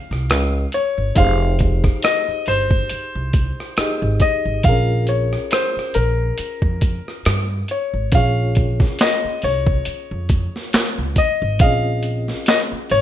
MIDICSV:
0, 0, Header, 1, 6, 480
1, 0, Start_track
1, 0, Tempo, 869565
1, 643, Time_signature, 4, 2, 24, 8
1, 7184, End_track
2, 0, Start_track
2, 0, Title_t, "Grand piano"
2, 0, Program_c, 0, 0
2, 0, Note_on_c, 0, 77, 83
2, 384, Note_off_c, 0, 77, 0
2, 410, Note_on_c, 0, 73, 86
2, 649, Note_on_c, 0, 77, 89
2, 653, Note_off_c, 0, 73, 0
2, 1104, Note_off_c, 0, 77, 0
2, 1126, Note_on_c, 0, 75, 85
2, 1368, Note_on_c, 0, 72, 88
2, 1371, Note_off_c, 0, 75, 0
2, 2326, Note_on_c, 0, 75, 83
2, 2354, Note_off_c, 0, 72, 0
2, 2548, Note_off_c, 0, 75, 0
2, 2565, Note_on_c, 0, 77, 81
2, 2787, Note_off_c, 0, 77, 0
2, 2808, Note_on_c, 0, 73, 65
2, 3047, Note_on_c, 0, 72, 78
2, 3053, Note_off_c, 0, 73, 0
2, 3268, Note_off_c, 0, 72, 0
2, 3282, Note_on_c, 0, 70, 78
2, 3980, Note_off_c, 0, 70, 0
2, 4256, Note_on_c, 0, 73, 68
2, 4497, Note_off_c, 0, 73, 0
2, 4498, Note_on_c, 0, 77, 77
2, 4973, Note_on_c, 0, 75, 81
2, 4984, Note_off_c, 0, 77, 0
2, 5192, Note_off_c, 0, 75, 0
2, 5212, Note_on_c, 0, 73, 87
2, 6145, Note_off_c, 0, 73, 0
2, 6172, Note_on_c, 0, 75, 84
2, 6409, Note_on_c, 0, 77, 87
2, 6414, Note_off_c, 0, 75, 0
2, 6864, Note_off_c, 0, 77, 0
2, 6890, Note_on_c, 0, 75, 84
2, 6944, Note_off_c, 0, 75, 0
2, 7129, Note_on_c, 0, 73, 102
2, 7184, Note_off_c, 0, 73, 0
2, 7184, End_track
3, 0, Start_track
3, 0, Title_t, "Reed electric piano"
3, 0, Program_c, 1, 4
3, 0, Control_c, 1, 64, 127
3, 0, Note_on_c, 1, 61, 57
3, 0, Note_on_c, 1, 65, 53
3, 0, Note_on_c, 1, 68, 52
3, 0, Note_on_c, 1, 73, 66
3, 620, Note_off_c, 1, 61, 0
3, 624, Note_off_c, 1, 65, 0
3, 628, Note_off_c, 1, 68, 0
3, 631, Note_off_c, 1, 73, 0
3, 636, Note_on_c, 1, 63, 62
3, 645, Note_on_c, 1, 67, 57
3, 650, Control_c, 1, 64, 0
3, 652, Note_on_c, 1, 68, 55
3, 660, Note_on_c, 1, 72, 67
3, 749, Control_c, 1, 64, 127
3, 2057, Note_off_c, 1, 63, 0
3, 2062, Note_off_c, 1, 67, 0
3, 2065, Note_off_c, 1, 68, 0
3, 2069, Note_off_c, 1, 72, 0
3, 2088, Note_on_c, 1, 63, 51
3, 2093, Note_on_c, 1, 67, 48
3, 2097, Note_on_c, 1, 68, 47
3, 2101, Note_on_c, 1, 75, 55
3, 2565, Note_off_c, 1, 63, 0
3, 2565, Note_on_c, 1, 60, 48
3, 2568, Note_off_c, 1, 67, 0
3, 2570, Note_off_c, 1, 68, 0
3, 2571, Control_c, 1, 64, 0
3, 2572, Note_off_c, 1, 75, 0
3, 2576, Note_on_c, 1, 65, 54
3, 2583, Note_on_c, 1, 68, 55
3, 2589, Note_on_c, 1, 70, 62
3, 2602, Note_on_c, 1, 61, 59
3, 2604, Note_off_c, 1, 60, 0
3, 2656, Control_c, 1, 64, 127
3, 4467, Note_off_c, 1, 65, 0
3, 4471, Note_off_c, 1, 68, 0
3, 4474, Note_off_c, 1, 70, 0
3, 4479, Note_off_c, 1, 61, 0
3, 4485, Note_on_c, 1, 61, 60
3, 4491, Control_c, 1, 64, 0
3, 4495, Note_on_c, 1, 65, 53
3, 4502, Note_on_c, 1, 68, 54
3, 4510, Note_on_c, 1, 73, 69
3, 4584, Control_c, 1, 64, 127
3, 6382, Note_off_c, 1, 61, 0
3, 6387, Note_off_c, 1, 65, 0
3, 6390, Note_off_c, 1, 68, 0
3, 6394, Note_off_c, 1, 73, 0
3, 6402, Note_on_c, 1, 60, 50
3, 6409, Note_on_c, 1, 65, 54
3, 6419, Note_on_c, 1, 68, 54
3, 6426, Note_on_c, 1, 75, 67
3, 6436, Note_on_c, 1, 61, 58
3, 6442, Note_off_c, 1, 60, 0
3, 7184, Note_off_c, 1, 61, 0
3, 7184, Note_off_c, 1, 65, 0
3, 7184, Note_off_c, 1, 68, 0
3, 7184, Note_off_c, 1, 75, 0
3, 7184, End_track
4, 0, Start_track
4, 0, Title_t, "Upright bass"
4, 0, Program_c, 2, 32
4, 61, Note_on_c, 2, 36, 81
4, 166, Note_off_c, 2, 36, 0
4, 166, Note_on_c, 2, 37, 80
4, 357, Note_off_c, 2, 37, 0
4, 540, Note_on_c, 2, 31, 74
4, 624, Note_off_c, 2, 31, 0
4, 643, Note_on_c, 2, 29, 94
4, 1027, Note_off_c, 2, 29, 0
4, 1367, Note_on_c, 2, 31, 85
4, 1557, Note_off_c, 2, 31, 0
4, 1741, Note_on_c, 2, 36, 72
4, 1931, Note_off_c, 2, 36, 0
4, 2220, Note_on_c, 2, 32, 89
4, 2304, Note_off_c, 2, 32, 0
4, 2459, Note_on_c, 2, 32, 75
4, 2543, Note_off_c, 2, 32, 0
4, 2565, Note_on_c, 2, 34, 93
4, 2948, Note_off_c, 2, 34, 0
4, 3288, Note_on_c, 2, 34, 79
4, 3478, Note_off_c, 2, 34, 0
4, 3657, Note_on_c, 2, 41, 76
4, 3849, Note_off_c, 2, 41, 0
4, 4009, Note_on_c, 2, 43, 85
4, 4199, Note_off_c, 2, 43, 0
4, 4381, Note_on_c, 2, 32, 73
4, 4464, Note_off_c, 2, 32, 0
4, 4486, Note_on_c, 2, 34, 92
4, 4869, Note_off_c, 2, 34, 0
4, 5208, Note_on_c, 2, 36, 83
4, 5398, Note_off_c, 2, 36, 0
4, 5582, Note_on_c, 2, 41, 78
4, 5772, Note_off_c, 2, 41, 0
4, 6063, Note_on_c, 2, 37, 84
4, 6145, Note_off_c, 2, 37, 0
4, 6303, Note_on_c, 2, 32, 80
4, 6406, Note_off_c, 2, 32, 0
4, 6406, Note_on_c, 2, 34, 96
4, 6789, Note_off_c, 2, 34, 0
4, 7128, Note_on_c, 2, 32, 86
4, 7184, Note_off_c, 2, 32, 0
4, 7184, End_track
5, 0, Start_track
5, 0, Title_t, "Muted upright bass strokes"
5, 1259, Note_on_c, 9, 29, 41
5, 1314, Note_off_c, 9, 29, 0
5, 1607, Note_on_c, 9, 29, 41
5, 1662, Note_off_c, 9, 29, 0
5, 2086, Note_on_c, 9, 29, 45
5, 2141, Note_off_c, 9, 29, 0
5, 3182, Note_on_c, 9, 29, 38
5, 3237, Note_off_c, 9, 29, 0
5, 3528, Note_on_c, 9, 29, 42
5, 3583, Note_off_c, 9, 29, 0
5, 5103, Note_on_c, 9, 29, 41
5, 5158, Note_off_c, 9, 29, 0
5, 5448, Note_on_c, 9, 29, 40
5, 5504, Note_off_c, 9, 29, 0
5, 5929, Note_on_c, 9, 29, 43
5, 5984, Note_off_c, 9, 29, 0
5, 7020, Note_on_c, 9, 29, 42
5, 7076, Note_off_c, 9, 29, 0
5, 7184, End_track
6, 0, Start_track
6, 0, Title_t, "Drums"
6, 70, Note_on_c, 9, 37, 27
6, 125, Note_off_c, 9, 37, 0
6, 165, Note_on_c, 9, 42, 68
6, 170, Note_on_c, 9, 37, 104
6, 220, Note_off_c, 9, 42, 0
6, 225, Note_off_c, 9, 37, 0
6, 398, Note_on_c, 9, 42, 55
6, 454, Note_off_c, 9, 42, 0
6, 638, Note_on_c, 9, 42, 81
6, 641, Note_on_c, 9, 36, 103
6, 693, Note_off_c, 9, 42, 0
6, 696, Note_off_c, 9, 36, 0
6, 877, Note_on_c, 9, 42, 47
6, 886, Note_on_c, 9, 36, 73
6, 932, Note_off_c, 9, 42, 0
6, 942, Note_off_c, 9, 36, 0
6, 1015, Note_on_c, 9, 36, 87
6, 1018, Note_on_c, 9, 37, 32
6, 1070, Note_off_c, 9, 36, 0
6, 1073, Note_off_c, 9, 37, 0
6, 1118, Note_on_c, 9, 42, 86
6, 1130, Note_on_c, 9, 37, 106
6, 1173, Note_off_c, 9, 42, 0
6, 1185, Note_off_c, 9, 37, 0
6, 1357, Note_on_c, 9, 46, 45
6, 1412, Note_off_c, 9, 46, 0
6, 1494, Note_on_c, 9, 36, 81
6, 1549, Note_off_c, 9, 36, 0
6, 1598, Note_on_c, 9, 42, 82
6, 1653, Note_off_c, 9, 42, 0
6, 1840, Note_on_c, 9, 42, 61
6, 1842, Note_on_c, 9, 36, 84
6, 1895, Note_off_c, 9, 42, 0
6, 1897, Note_off_c, 9, 36, 0
6, 1989, Note_on_c, 9, 37, 29
6, 2044, Note_off_c, 9, 37, 0
6, 2080, Note_on_c, 9, 42, 68
6, 2085, Note_on_c, 9, 37, 104
6, 2135, Note_off_c, 9, 42, 0
6, 2140, Note_off_c, 9, 37, 0
6, 2317, Note_on_c, 9, 42, 55
6, 2320, Note_on_c, 9, 36, 75
6, 2372, Note_off_c, 9, 42, 0
6, 2375, Note_off_c, 9, 36, 0
6, 2558, Note_on_c, 9, 42, 80
6, 2562, Note_on_c, 9, 36, 97
6, 2613, Note_off_c, 9, 42, 0
6, 2617, Note_off_c, 9, 36, 0
6, 2798, Note_on_c, 9, 42, 46
6, 2853, Note_off_c, 9, 42, 0
6, 2941, Note_on_c, 9, 37, 33
6, 2996, Note_off_c, 9, 37, 0
6, 3040, Note_on_c, 9, 42, 88
6, 3052, Note_on_c, 9, 37, 101
6, 3096, Note_off_c, 9, 42, 0
6, 3107, Note_off_c, 9, 37, 0
6, 3196, Note_on_c, 9, 37, 29
6, 3251, Note_off_c, 9, 37, 0
6, 3280, Note_on_c, 9, 42, 60
6, 3335, Note_off_c, 9, 42, 0
6, 3520, Note_on_c, 9, 42, 82
6, 3575, Note_off_c, 9, 42, 0
6, 3654, Note_on_c, 9, 36, 73
6, 3709, Note_off_c, 9, 36, 0
6, 3761, Note_on_c, 9, 42, 58
6, 3764, Note_on_c, 9, 36, 75
6, 3816, Note_off_c, 9, 42, 0
6, 3819, Note_off_c, 9, 36, 0
6, 3909, Note_on_c, 9, 37, 29
6, 3964, Note_off_c, 9, 37, 0
6, 4004, Note_on_c, 9, 42, 70
6, 4009, Note_on_c, 9, 37, 108
6, 4059, Note_off_c, 9, 42, 0
6, 4064, Note_off_c, 9, 37, 0
6, 4241, Note_on_c, 9, 42, 54
6, 4296, Note_off_c, 9, 42, 0
6, 4481, Note_on_c, 9, 42, 80
6, 4484, Note_on_c, 9, 36, 100
6, 4536, Note_off_c, 9, 42, 0
6, 4539, Note_off_c, 9, 36, 0
6, 4720, Note_on_c, 9, 42, 47
6, 4729, Note_on_c, 9, 36, 72
6, 4776, Note_off_c, 9, 42, 0
6, 4785, Note_off_c, 9, 36, 0
6, 4857, Note_on_c, 9, 36, 83
6, 4860, Note_on_c, 9, 38, 33
6, 4913, Note_off_c, 9, 36, 0
6, 4916, Note_off_c, 9, 38, 0
6, 4961, Note_on_c, 9, 42, 82
6, 4973, Note_on_c, 9, 38, 110
6, 4978, Note_on_c, 9, 39, 85
6, 5016, Note_off_c, 9, 42, 0
6, 5028, Note_off_c, 9, 38, 0
6, 5033, Note_off_c, 9, 39, 0
6, 5199, Note_on_c, 9, 46, 43
6, 5255, Note_off_c, 9, 46, 0
6, 5336, Note_on_c, 9, 36, 85
6, 5391, Note_off_c, 9, 36, 0
6, 5439, Note_on_c, 9, 42, 82
6, 5494, Note_off_c, 9, 42, 0
6, 5681, Note_on_c, 9, 42, 57
6, 5684, Note_on_c, 9, 36, 83
6, 5736, Note_off_c, 9, 42, 0
6, 5739, Note_off_c, 9, 36, 0
6, 5828, Note_on_c, 9, 38, 27
6, 5883, Note_off_c, 9, 38, 0
6, 5924, Note_on_c, 9, 42, 74
6, 5929, Note_on_c, 9, 38, 111
6, 5934, Note_on_c, 9, 39, 86
6, 5979, Note_off_c, 9, 42, 0
6, 5984, Note_off_c, 9, 38, 0
6, 5990, Note_off_c, 9, 39, 0
6, 6160, Note_on_c, 9, 42, 57
6, 6161, Note_on_c, 9, 36, 74
6, 6215, Note_off_c, 9, 42, 0
6, 6216, Note_off_c, 9, 36, 0
6, 6399, Note_on_c, 9, 42, 81
6, 6403, Note_on_c, 9, 36, 102
6, 6454, Note_off_c, 9, 42, 0
6, 6458, Note_off_c, 9, 36, 0
6, 6639, Note_on_c, 9, 42, 46
6, 6694, Note_off_c, 9, 42, 0
6, 6780, Note_on_c, 9, 38, 32
6, 6835, Note_off_c, 9, 38, 0
6, 6878, Note_on_c, 9, 42, 84
6, 6890, Note_on_c, 9, 38, 114
6, 6896, Note_on_c, 9, 39, 82
6, 6934, Note_off_c, 9, 42, 0
6, 6946, Note_off_c, 9, 38, 0
6, 6951, Note_off_c, 9, 39, 0
6, 7118, Note_on_c, 9, 46, 44
6, 7174, Note_off_c, 9, 46, 0
6, 7184, End_track
0, 0, End_of_file